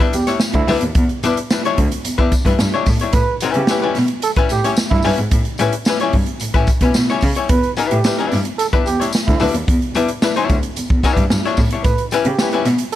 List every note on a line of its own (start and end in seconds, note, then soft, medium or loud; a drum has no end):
0.00 0.15 G3 medium
0.00 0.14 D4 medium
0.00 0.14 E4 medium
0.00 0.14 B4 medium
0.00 kick medium
0.13 0.21 E2 medium
0.13 0.35 G4 loud
0.13 closed hi-hat medium
0.13 tambourine soft
0.27 0.39 G3 medium
0.27 0.38 D4 medium
0.27 0.38 E4 medium
0.27 0.38 C#5 medium
0.27 snare soft
0.27 closed hi-hat medium
0.40 snare loud
0.40 tambourine loud
0.53 0.62 D2 loud
0.53 0.77 E4 loud
0.53 kick medium
0.53 closed hi-hat soft
0.68 0.76 D2 medium
0.68 0.82 G3 loud
0.68 0.82 D4 loud
0.68 0.82 E4 loud
0.68 0.83 B4 loud
0.68 open hi-hat medium
0.68 tambourine medium
0.81 0.90 D#2 medium
0.81 closed hi-hat medium
0.95 1.04 E2 loud
0.95 kick loud
0.95 closed hi-hat medium
1.09 closed hi-hat soft
1.23 1.31 E2 medium
1.23 1.37 G3 medium
1.23 1.37 D4 medium
1.23 1.38 E4 loud
1.23 1.38 B4 loud
1.23 closed hi-hat medium
1.23 tambourine medium
1.37 closed hi-hat medium
1.50 1.61 G3 medium
1.50 1.62 D4 medium
1.50 1.62 E4 medium
1.50 1.62 B4 medium
1.50 snare loud
1.50 tambourine medium
1.65 1.79 G3 medium
1.65 1.79 D4 medium
1.65 1.79 E4 medium
1.65 1.78 C#5 medium
1.65 closed hi-hat soft
1.78 1.86 D2 medium
1.78 kick medium
1.78 closed hi-hat medium
1.92 closed hi-hat medium
2.05 2.09 E2 medium
2.05 closed hi-hat medium
2.05 tambourine medium
2.18 2.26 E2 medium
2.18 2.33 G3 medium
2.18 2.33 D4 medium
2.18 2.32 E4 medium
2.18 2.32 B4 medium
2.18 kick medium
2.32 kick loud
2.32 closed hi-hat medium
2.32 tambourine medium
2.45 2.53 G2 medium
2.45 2.58 G3 medium
2.45 2.57 D4 medium
2.45 2.57 E4 medium
2.45 2.57 B4 medium
2.45 kick medium
2.45 snare soft
2.45 closed hi-hat medium
2.59 2.67 G2 medium
2.59 snare loud
2.59 tambourine loud
2.74 2.88 G3 medium
2.74 2.88 D4 medium
2.74 2.87 E4 medium
2.74 2.87 C#5 medium
2.86 2.95 A2 loud
2.86 kick medium
2.86 open hi-hat medium
2.86 tambourine medium
2.99 3.12 G3 soft
2.99 3.12 D4 soft
2.99 3.12 E4 medium
2.99 3.11 C#5 medium
2.99 closed hi-hat medium
3.13 3.21 A2 loud
3.13 3.35 B4 loud
3.13 kick loud
3.13 closed hi-hat medium
3.13 tambourine soft
3.40 3.62 G3 medium
3.40 3.62 C#4 medium
3.40 3.62 E4 medium
3.40 closed hi-hat medium
3.40 tambourine medium
3.44 3.63 B4 medium
3.54 3.63 C#3 medium
3.54 3.94 G4 loud
3.54 closed hi-hat soft
3.67 3.80 G3 medium
3.67 3.80 C#4 medium
3.67 3.80 E4 medium
3.67 3.80 B4 medium
3.67 snare loud
3.67 tambourine medium
3.82 3.97 G3 medium
3.82 3.96 C#4 medium
3.82 3.96 E4 medium
3.82 3.96 B4 medium
3.95 4.05 B2 medium
3.95 snare soft
3.95 open hi-hat medium
3.95 tambourine soft
4.08 closed hi-hat medium
4.22 4.31 A4 loud
4.22 closed hi-hat medium
4.22 tambourine medium
4.36 4.41 A2 soft
4.36 4.51 G3 medium
4.36 4.51 C#4 medium
4.36 4.51 E4 medium
4.36 4.50 B4 loud
4.36 kick medium
4.36 closed hi-hat soft
4.49 4.58 A2 loud
4.49 4.73 G4 loud
4.49 closed hi-hat medium
4.49 tambourine medium
4.64 4.76 G3 medium
4.64 4.75 C#4 medium
4.64 4.75 E4 medium
4.64 4.75 C#5 medium
4.64 snare soft
4.64 closed hi-hat medium
4.76 snare loud
4.76 tambourine loud
4.91 4.99 G2 loud
4.91 5.12 E4 loud
4.91 kick medium
4.91 snare soft
5.02 5.13 G2 medium
5.02 5.18 G3 medium
5.02 5.18 C#4 loud
5.02 5.19 E4 loud
5.02 open hi-hat medium
5.02 tambourine medium
5.06 5.19 B4 medium
5.18 5.26 G#2 medium
5.18 closed hi-hat medium
5.31 5.40 A2 medium
5.31 kick loud
5.31 closed hi-hat medium
5.45 closed hi-hat soft
5.58 5.67 A2 medium
5.58 5.73 G3 medium
5.58 5.73 C#4 medium
5.58 5.74 E4 loud
5.58 5.74 B4 medium
5.58 closed hi-hat medium
5.58 tambourine medium
5.73 closed hi-hat medium
5.85 5.97 G3 medium
5.85 5.98 C#4 medium
5.85 5.98 E4 medium
5.85 5.98 B4 medium
5.85 snare loud
5.85 tambourine medium
6.00 6.15 G3 medium
6.00 6.15 C#4 medium
6.00 6.14 E4 medium
6.00 6.14 C#5 medium
6.00 closed hi-hat soft
6.13 6.22 G2 medium
6.13 kick medium
6.13 open hi-hat medium
6.26 closed hi-hat medium
6.40 6.46 A2 medium
6.40 closed hi-hat medium
6.40 tambourine medium
6.54 6.62 A2 loud
6.54 6.69 G3 medium
6.54 6.69 C#4 medium
6.54 6.69 E4 medium
6.54 6.68 B4 medium
6.54 kick medium
6.54 closed hi-hat soft
6.67 kick medium
6.67 closed hi-hat medium
6.67 tambourine medium
6.81 6.89 B2 medium
6.81 6.94 G3 medium
6.81 6.94 C#4 medium
6.81 6.93 E4 medium
6.81 6.93 B4 medium
6.81 kick medium
6.81 snare soft
6.81 closed hi-hat medium
6.94 7.05 B2 medium
6.94 snare loud
6.94 tambourine loud
7.08 7.24 G3 medium
7.08 7.24 C#4 medium
7.08 7.23 E4 medium
7.08 7.23 C#5 medium
7.08 snare soft
7.21 7.31 C#3 loud
7.21 kick medium
7.21 open hi-hat medium
7.21 tambourine medium
7.35 7.48 G3 medium
7.35 7.48 C#4 medium
7.35 7.47 E4 medium
7.35 7.47 C#5 medium
7.35 closed hi-hat medium
7.49 7.58 E2 loud
7.49 7.71 B4 loud
7.49 kick loud
7.49 closed hi-hat medium
7.63 closed hi-hat soft
7.77 7.97 G3 medium
7.77 7.97 D4 medium
7.77 7.98 E4 medium
7.77 7.98 B4 medium
7.77 closed hi-hat medium
7.77 tambourine medium
7.90 8.00 A2 loud
7.90 8.29 G4 medium
7.90 closed hi-hat medium
8.04 8.15 G3 medium
8.04 8.16 D4 medium
8.04 8.16 E4 medium
8.04 8.16 B4 medium
8.04 snare loud
8.04 tambourine medium
8.18 8.39 G3 medium
8.18 8.39 D4 medium
8.18 8.38 E4 medium
8.18 8.38 B4 medium
8.18 closed hi-hat soft
8.31 8.41 G2 medium
8.31 snare soft
8.31 open hi-hat medium
8.31 tambourine soft
8.45 closed hi-hat medium
8.58 8.66 A4 loud
8.58 closed hi-hat medium
8.58 tambourine medium
8.73 8.77 E2 soft
8.73 8.87 G3 medium
8.73 8.87 D4 medium
8.73 8.87 E4 medium
8.73 8.86 B4 medium
8.73 kick medium
8.73 closed hi-hat soft
8.86 8.95 E2 medium
8.86 9.07 G4 loud
8.86 closed hi-hat medium
8.86 tambourine soft
9.00 9.11 G3 medium
9.00 9.11 D4 medium
9.00 9.11 E4 medium
9.00 9.10 C#5 medium
9.00 snare soft
9.00 closed hi-hat medium
9.13 snare loud
9.13 tambourine loud
9.27 9.36 D2 loud
9.27 9.48 E4 medium
9.27 kick loud
9.27 snare soft
9.27 closed hi-hat soft
9.40 9.49 D2 medium
9.40 9.54 G3 medium
9.40 9.54 D4 medium
9.40 9.54 E4 loud
9.40 9.55 B4 loud
9.40 open hi-hat medium
9.40 tambourine medium
9.54 9.62 D#2 medium
9.54 closed hi-hat medium
9.68 9.76 E2 loud
9.68 kick loud
9.68 closed hi-hat medium
9.82 closed hi-hat soft
9.95 10.03 E2 medium
9.95 10.09 G3 medium
9.95 10.09 D4 loud
9.95 10.09 E4 loud
9.95 10.09 B4 medium
9.95 closed hi-hat medium
9.95 tambourine medium
10.08 closed hi-hat soft
10.22 10.33 G3 medium
10.22 10.33 D4 medium
10.22 10.33 E4 medium
10.22 10.34 B4 medium
10.22 snare loud
10.22 tambourine medium
10.36 10.57 G3 medium
10.36 10.56 D4 medium
10.36 10.56 E4 medium
10.36 10.56 C#5 medium
10.36 closed hi-hat soft
10.49 10.58 D2 medium
10.49 kick loud
10.49 closed hi-hat medium
10.49 tambourine soft
10.63 closed hi-hat medium
10.76 10.81 E2 soft
10.76 closed hi-hat medium
10.76 tambourine medium
10.90 10.98 E2 medium
10.90 kick loud
11.03 11.23 G3 medium
11.03 11.24 D4 medium
11.03 11.24 E4 loud
11.03 11.24 B4 medium
11.03 kick medium
11.03 closed hi-hat medium
11.03 tambourine medium
11.17 11.25 G2 medium
11.17 kick medium
11.17 snare soft
11.17 closed hi-hat medium
11.30 11.39 G2 medium
11.30 snare loud
11.30 tambourine loud
11.45 11.59 G3 medium
11.45 11.59 D4 medium
11.45 11.58 E4 medium
11.45 11.58 C#5 medium
11.45 snare soft
11.57 11.66 A2 medium
11.57 kick medium
11.57 open hi-hat medium
11.57 tambourine medium
11.70 11.83 G3 soft
11.70 11.83 D4 soft
11.70 11.83 E4 medium
11.70 11.83 C#5 medium
11.70 closed hi-hat medium
11.84 11.92 A2 medium
11.84 12.06 B4 loud
11.84 kick loud
11.84 closed hi-hat medium
11.84 tambourine soft
11.98 closed hi-hat soft
12.11 12.26 G3 medium
12.11 12.26 C#4 loud
12.11 12.26 E4 medium
12.11 12.26 B4 loud
12.11 closed hi-hat medium
12.11 tambourine medium
12.25 12.33 C#3 medium
12.25 12.63 G4 medium
12.25 closed hi-hat medium
12.39 12.50 G3 medium
12.39 12.50 C#4 medium
12.39 12.51 E4 medium
12.39 12.51 B4 medium
12.39 snare loud
12.39 tambourine medium
12.52 12.67 G3 medium
12.52 12.67 C#4 medium
12.52 12.67 E4 medium
12.52 12.66 B4 medium
12.52 closed hi-hat soft
12.65 12.73 B2 loud
12.65 snare soft
12.65 closed hi-hat medium
12.65 tambourine soft
12.78 closed hi-hat medium